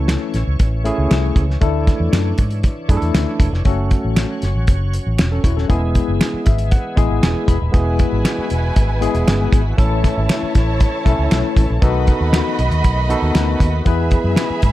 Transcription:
Already playing: fingered electric bass C#2, tonewheel organ E3 C#4 C#5, tine electric piano A3 C#4 E4 A4
0.08 finger snap, snare, closed hi-hat
0.34 fingered electric bass A1, snare, closed hi-hat
0.47 fingered electric bass C#2
0.59 fingered electric bass A1, kick, closed hi-hat
0.84 tine electric piano A3 C#4 E4 G#4, closed hi-hat
0.98 fingered electric bass C#2
1.11 fingered electric bass C2, finger snap, snare, closed hi-hat
1.36 fingered electric bass C#2, kick, closed hi-hat
1.50 snare
1.61 fingered electric bass D2, tonewheel organ E3 D4, tine electric piano A3 D4 E4 A4, kick, closed hi-hat
1.87 kick, snare, closed hi-hat
2.00 fingered electric bass E2
2.13 fingered electric bass F#2, finger snap, snare, closed hi-hat
2.38 fingered electric bass G#2, kick, closed hi-hat
2.51 closed hi-hat
2.64 kick, closed hi-hat
2.89 fingered electric bass F#2, tine electric piano A3 D4 E4 G#4, kick, closed hi-hat
2.97 tine electric piano A4
3.02 fingered electric bass E2, closed hi-hat
3.15 fingered electric bass D2, finger snap, snare, closed hi-hat
3.40 fingered electric bass E1, kick, closed hi-hat
3.53 fingered electric bass F1, snare
3.65 fingered electric bass F#1, tonewheel organ F#3 C#4, tine electric piano A3 C#4 F#4 A4, kick, closed hi-hat
3.91 kick, closed hi-hat
4.05 fingered electric bass A1
4.17 finger snap, snare, closed hi-hat
4.42 fingered electric bass F#1, snare, closed hi-hat
4.56 fingered electric bass A1
4.67 fingered electric bass F#1, kick, closed hi-hat
4.94 closed hi-hat
5.07 fingered electric bass A1
5.19 fingered electric bass E1, finger snap, snare, closed hi-hat
5.32 tine electric piano C#4 A4
5.44 fingered electric bass D#1, tine electric piano E4 C#5, kick, closed hi-hat
5.57 tine electric piano C#4 A4, snare
5.68 fingered electric bass E1, tonewheel organ E3 G#3 B3 G#4, tine electric piano G#3 B3 E4 G#4, kick, closed hi-hat
5.95 kick, closed hi-hat
6.08 fingered electric bass F#1
6.21 finger snap, snare, closed hi-hat
6.34 muted fingered electric bass stroke
6.46 fingered electric bass G#1, tine electric piano E5, kick, closed hi-hat
6.58 closed hi-hat
6.71 tine electric piano F#5, kick, closed hi-hat
6.96 fingered electric bass A1, tine electric piano G#3 B3 E4 G#4, kick, closed hi-hat
7.10 fingered electric bass G#1
7.23 fingered electric bass E1, tine electric piano G#5, finger snap, snare, closed hi-hat
7.48 fingered electric bass E1, tine electric piano B5, kick, closed hi-hat
7.61 fingered electric bass D#1
7.72 fingered electric bass E1, tine electric piano G#3 B3 E4 G#4, violin section E4 B4 G#5, tonewheel organ F#4, kick, closed hi-hat
7.99 kick, closed hi-hat
8.12 fingered electric bass G#1
8.25 finger snap, snare, closed hi-hat
8.38 muted fingered electric bass stroke
8.50 fingered electric bass E1, closed hi-hat
8.76 fingered electric bass G#1, kick, closed hi-hat
9.00 tine electric piano G#3 B3 E4 G#4, closed hi-hat
9.14 fingered electric bass E1, closed hi-hat
9.27 fingered electric bass G1, finger snap, snare, closed hi-hat
9.52 fingered electric bass G#1, kick, closed hi-hat
9.77 fingered electric bass A1, tine electric piano A3 C#4 E4 A4, tonewheel organ A3 C#4 A4, violin section E4 C#5 A5, kick, closed hi-hat
10.04 kick, snare, closed hi-hat
10.17 fingered electric bass G#1
10.29 finger snap, snare, closed hi-hat
10.43 muted fingered electric bass stroke
10.55 fingered electric bass A1, kick, snare, closed hi-hat
10.80 kick, closed hi-hat
11.05 fingered electric bass B1, tine electric piano A3 C#4 E4 A4, kick, closed hi-hat
11.19 fingered electric bass C#2
11.31 fingered electric bass B1, finger snap, snare, closed hi-hat
11.57 fingered electric bass A1, kick, closed hi-hat
11.70 fingered electric bass A#1
11.82 fingered electric bass B1, tonewheel organ D#3 B3 F#4, tine electric piano B3 D#4 F#4 A4, violin section F#4 D#5 B5, kick, closed hi-hat
12.07 kick, closed hi-hat
12.21 fingered electric bass D#2
12.33 finger snap, snare, closed hi-hat
12.59 fingered electric bass B1, closed hi-hat
12.71 fingered electric bass D#2, closed hi-hat
12.84 fingered electric bass B1, kick, closed hi-hat
13.09 tine electric piano B3 D#4 F#4 A4, closed hi-hat
13.22 fingered electric bass D#2
13.35 fingered electric bass D2, finger snap, snare, closed hi-hat
13.60 fingered electric bass D#2, kick, closed hi-hat
13.85 fingered electric bass E2, tonewheel organ E3 G#3 B3 G#4, tine electric piano B3 E4 G#4 B4, violin section G#4 E5 B5, kick, closed hi-hat
14.11 kick, closed hi-hat
14.24 fingered electric bass F#2
14.36 finger snap, snare, closed hi-hat
14.50 muted fingered electric bass stroke
14.62 fingered electric bass G#2, kick, closed hi-hat

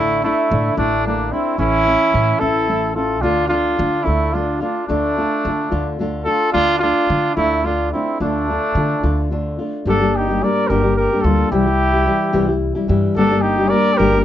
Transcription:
Already playing: upright bass A1, nylon-string guitar A2 D3 A3 D4 E4, trumpet A3 E4
0.23 trumpet A3 E4, nylon-string guitar A3 D4 E4
0.50 upright bass A2, nylon-string guitar D3 A3 D4 E4
0.77 upright bass A1, nylon-string guitar A2 D3 A3 D4 E4, trumpet A3 D4
1.05 nylon-string guitar D3 A3 D4 E4, trumpet A#3 D4
1.32 nylon-string guitar A3 D4 E4, trumpet C4 E4
1.58 upright bass A1, nylon-string guitar A2 E3 A3 C#4 E4, trumpet C#4 E4
1.86 nylon-string guitar A3 C#4 E4
2.13 upright bass A2, nylon-string guitar E3 A3 C#4 E4
2.39 upright bass A1, nylon-string guitar A2 E3 A3 C#4 E4, trumpet E4 A4
2.68 nylon-string guitar E3 A3 C#4 E4
2.95 nylon-string guitar A3 C#4 E4, trumpet F4 A4
3.21 upright bass D2, nylon-string guitar D3 A3 D4 F4, trumpet D4 F4
3.48 nylon-string guitar A3 D4 F4, trumpet D4 F4
3.78 nylon-string guitar D3 A3 D4 F4, upright bass D3
4.03 upright bass D2, nylon-string guitar D3 A3 D4 F4, trumpet A3 E4
4.34 nylon-string guitar D3 A3 D4 F4, trumpet D4 F4
4.60 nylon-string guitar A3 D4 F4, trumpet D4 F4
4.87 upright bass D2, nylon-string guitar D3 A3 D4 F4, trumpet A3 D4
5.18 nylon-string guitar A3 D4 F4
5.45 upright bass D3, nylon-string guitar D3 A3 D4 F4
5.72 upright bass D2, nylon-string guitar D3 A3 D4 F4
5.99 nylon-string guitar D3 A3 D4 F4
6.24 nylon-string guitar A3 D4 F4, trumpet F4 A4
6.52 upright bass D2, nylon-string guitar D3 A3 D4 F4, trumpet D4 F4
6.79 trumpet D4 F4, nylon-string guitar D4 F4
6.83 nylon-string guitar A3
7.09 nylon-string guitar D3 A3 D4 F4, upright bass D3
7.36 upright bass D2, nylon-string guitar D3 A3 D4 F4, trumpet A3 E4
7.64 nylon-string guitar D3 A3 D4 F4, trumpet D4 F4
7.93 nylon-string guitar A3 D4 F4, trumpet C4 E4
8.20 upright bass D2, nylon-string guitar D3 A3 D4 F4, trumpet A3 D4
8.49 nylon-string guitar A3 D4 F4
8.75 upright bass D3, nylon-string guitar D3 A3 D4 F4
9.03 upright bass D2, nylon-string guitar D3 A3 D4 F4
9.31 nylon-string guitar D3 A3 D4 F4
9.59 nylon-string guitar A3 D4 F4
9.86 upright bass G1, nylon-string guitar G2 D3 G3 A#3 D4 G4, trumpet D4 A4
10.00 nylon-string guitar G3 A#3 D4 G4
10.16 trumpet D#4 G4
10.29 nylon-string guitar G3 A#3 D4 G4
10.42 nylon-string guitar G3 A#3 D4 G4, trumpet A#4 D5
10.68 upright bass G1, nylon-string guitar G2 D3 G3 A#3 D4 G4, trumpet G4 A#4
10.83 nylon-string guitar G3 A#3 D4 G4
10.96 trumpet G4 A#4
11.12 nylon-string guitar G3 A#3 D4 G4
11.21 upright bass D2, nylon-string guitar G3, trumpet A4
11.25 nylon-string guitar A#3 D4 G4, trumpet F4
11.51 upright bass C2, nylon-string guitar C3 E3 G3 E4 G4, trumpet E4 G4
11.66 nylon-string guitar G3 E4 G4
11.93 nylon-string guitar G3 E4 G4
12.06 nylon-string guitar E3 G3 E4 G4
12.33 upright bass C2, nylon-string guitar C3 E3 G3 E4 G4
12.47 nylon-string guitar G3 E4 G4
12.75 nylon-string guitar G3 E4 G4
12.88 upright bass G2, nylon-string guitar E3 G3 E4 G4
13.16 upright bass G1, nylon-string guitar G2 D3 G3 A#3 D4 G4, trumpet D4 A4
13.31 nylon-string guitar G3 A#3 D4 G4
13.42 trumpet D#4 G4
13.59 nylon-string guitar G3 A#3 D4 G4
13.69 nylon-string guitar G3 A#3 D4, trumpet A#4 D5
13.73 nylon-string guitar G4
13.94 trumpet G4 A#4
13.99 upright bass G1, nylon-string guitar G2 D3 G3 A#3 D4 G4
14.13 nylon-string guitar G3 A#3 G4
14.22 trumpet G4

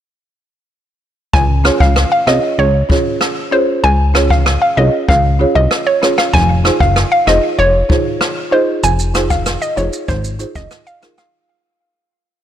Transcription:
1.33 analog synth bass C#2, synth pluck G#5, kick
1.64 marimba C#4 F4 G#4 C#5, cross-stick
1.80 analog synth bass C#2, synth pluck F5, kick
1.96 cross-stick
2.12 synth pluck F5
2.26 analog synth bass C2, marimba C#4 F4 G#4 C#5, synth pluck D#5, cross-stick
2.58 analog synth bass C#2, synth pluck C#5
2.89 marimba C#4 F4 G#4 C#5, kick
3.21 cross-stick
3.51 marimba C#4 F4 G#4 C#5, synth pluck C5
3.84 analog synth bass C#2, synth pluck G#5
4.14 marimba C#4 F4 G#4 C#5, cross-stick
4.30 synth pluck F5, kick
4.46 cross-stick
4.62 synth pluck F5
4.77 analog synth bass C2, marimba C#4 F4 G#4 C#5, synth pluck D#5
5.09 analog synth bass C#2, synth pluck F5, kick
5.39 marimba C#4 F4 G#4 C#5
5.55 analog synth bass C2, synth pluck D#5
5.71 cross-stick
5.87 synth pluck C#5
6.02 marimba C#4 F4 G#4 C#5, cross-stick
6.18 synth pluck F5, cross-stick
6.33 analog synth bass F1, synth pluck G#5, kick
6.64 marimba D#4 F4 G#4 C5, cross-stick
6.80 analog synth bass F#1, synth pluck F5, kick
6.96 cross-stick
7.12 synth pluck F5
7.27 analog synth bass F1, marimba D#4 F4 G#4 C5, synth pluck D#5, cross-stick
7.59 analog synth bass F1, synth pluck C#5
7.89 marimba D#4 F4 G#4 C5, kick
8.21 cross-stick
8.51 marimba D#4 F4 G#4 D#5, synth pluck C5
8.84 analog synth bass F1, synth pluck G#5, shaker
8.99 shaker
9.14 marimba D#4 F4 G#4 C5, cross-stick, closed hi-hat, shaker
9.30 synth pluck F5, kick, shaker
9.46 cross-stick, shaker
9.62 synth pluck D#5, shaker
9.76 analog synth bass F1, marimba D#4 F4 G#4 C5, synth pluck C#5, closed hi-hat, shaker
9.93 shaker
10.08 analog synth bass G#1, synth pluck C5, kick, shaker
10.24 shaker
10.39 marimba D#4 F4 G#4 C5, closed hi-hat, shaker
10.55 analog synth bass F#1, synth pluck D#5, kick, shaker
10.71 cross-stick, shaker
10.87 synth pluck F5, shaker
11.01 marimba D#4 F4 G#4 A#4, cross-stick, closed hi-hat, shaker
11.18 synth pluck F5, cross-stick, shaker

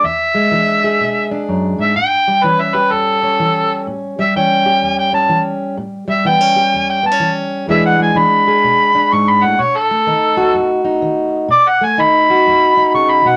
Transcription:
0.04 steel-string acoustic guitar E2, harmonica E5
0.35 steel-string acoustic guitar G#3
0.52 steel-string acoustic guitar E3 D4
0.84 steel-string acoustic guitar G#4
1.01 steel-string acoustic guitar B2
1.31 steel-string acoustic guitar D4
1.49 steel-string acoustic guitar F#2
1.78 steel-string acoustic guitar G#2, harmonica E5
1.96 steel-string acoustic guitar A2, harmonica G5
2.28 steel-string acoustic guitar G3
2.44 steel-string acoustic guitar E3 C#4, harmonica B4
2.61 harmonica E5
2.74 steel-string acoustic guitar G4, harmonica B4
2.90 steel-string acoustic guitar E2, harmonica A4
3.23 steel-string acoustic guitar C#4
3.40 steel-string acoustic guitar E3
3.87 steel-string acoustic guitar A2
4.19 steel-string acoustic guitar G3, harmonica E5
4.36 steel-string acoustic guitar E3 C#4, harmonica G5
4.66 steel-string acoustic guitar G4
4.82 steel-string acoustic guitar E2
4.99 harmonica G5
5.13 steel-string acoustic guitar C#4, harmonica A5
5.29 steel-string acoustic guitar E3
5.78 steel-string acoustic guitar A2
6.08 steel-string acoustic guitar G3, harmonica E5
6.25 steel-string acoustic guitar E3 B3, harmonica G5
6.41 steel-string acoustic guitar C#4
6.56 steel-string acoustic guitar G4
6.74 steel-string acoustic guitar E2
6.90 harmonica G5
7.03 steel-string acoustic guitar B3, harmonica A5
7.12 steel-string acoustic guitar C#4
7.20 steel-string acoustic guitar E3
7.67 steel-string acoustic guitar E2 E3 G#3 D4 G#4, harmonica E5
7.86 harmonica F#5
7.99 steel-string acoustic guitar G#3, harmonica G#5
8.15 steel-string acoustic guitar E3 D4, harmonica B5
8.48 steel-string acoustic guitar G#4
8.64 steel-string acoustic guitar B2
8.95 steel-string acoustic guitar D4
9.12 steel-string acoustic guitar G#2, harmonica C#6
9.30 harmonica B5
9.43 steel-string acoustic guitar A2, harmonica F#5
9.59 steel-string acoustic guitar B2, harmonica C#5
9.77 harmonica A4
9.91 steel-string acoustic guitar A3
10.07 steel-string acoustic guitar D#3 D#4
10.37 steel-string acoustic guitar F#4
10.54 steel-string acoustic guitar F#2
10.84 steel-string acoustic guitar D#4
11.02 steel-string acoustic guitar D#3
11.49 steel-string acoustic guitar B2, harmonica D5
11.68 harmonica F#5
11.81 steel-string acoustic guitar A3, harmonica G#5
11.98 steel-string acoustic guitar D#3 D#4, harmonica B5
12.30 steel-string acoustic guitar F#4
12.47 steel-string acoustic guitar F#2
12.77 steel-string acoustic guitar D#4
12.94 steel-string acoustic guitar C#3, harmonica C#6
13.11 harmonica B5
13.25 steel-string acoustic guitar B2, harmonica F#5

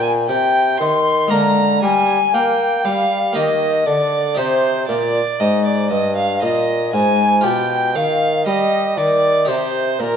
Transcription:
Already playing: harpsichord A#2 A#4, bassoon A#2
0.02 violin G#5, flute G#5
0.27 bassoon C3, harpsichord C3, violin G5, flute G5
0.78 bassoon D#3, harpsichord D#3, violin C6, flute C6
1.28 bassoon D3, harpsichord G#3 A#3 A#4, violin A#5, flute A#5
1.32 harpsichord D3
1.82 bassoon G3, harpsichord G3, flute G#5, violin G#5
2.33 bassoon A#3, harpsichord A#3, flute G5, violin G5
2.84 bassoon G3, harpsichord G3, flute F5, violin F5
3.33 bassoon D#3, harpsichord D#3 A#3 G4, violin D#5, flute D#5
3.86 bassoon D3, harpsichord D3, violin D5, flute D5
4.35 bassoon C3, harpsichord C3 D#4 G4, violin C5, flute C5
4.88 bassoon A#2, harpsichord A#2, violin D5, flute D5
5.40 bassoon G#2, harpsichord G#2, violin D#5, flute D#5
5.65 violin D5, flute D5
5.90 bassoon G2, harpsichord G2, violin D#5, flute D#5
6.16 violin F5, flute F5
6.42 harpsichord A#2, bassoon A#2, violin D#5, flute D#5
6.93 harpsichord G#2, bassoon G#2, violin G#5, flute G#5
7.41 harpsichord B2 F4 G4, bassoon B2, flute G5, violin G5
7.95 harpsichord D#3, bassoon D#3, flute F5, violin F5
8.46 harpsichord G3, bassoon G3, flute D#5, violin D#5
8.97 harpsichord D#3, bassoon D#3, flute D5, violin D5
9.45 harpsichord C3 D#4 G4, bassoon C3, flute C5
9.49 violin C5
9.99 harpsichord A#2, bassoon A#2, flute A#4, violin A#4

